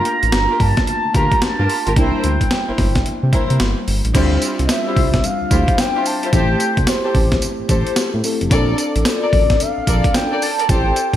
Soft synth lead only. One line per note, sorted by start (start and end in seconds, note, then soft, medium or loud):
0.00 0.63 A#5 loud
0.61 0.88 A5 loud
0.89 1.13 A5 loud
1.16 1.41 A#5 loud
1.43 1.93 A5 loud
1.98 3.57 G5 medium
4.65 4.72 D#5 medium
4.71 5.27 E5 medium
5.25 5.81 F5 loud
5.80 6.08 G5 loud
6.07 6.33 A5 medium
6.34 6.90 G5 loud
6.89 7.43 C5 medium
9.07 9.63 D5 medium
9.61 10.17 F5 loud
10.16 10.44 G5 loud
10.43 10.72 A5 loud
10.70 11.16 G5 loud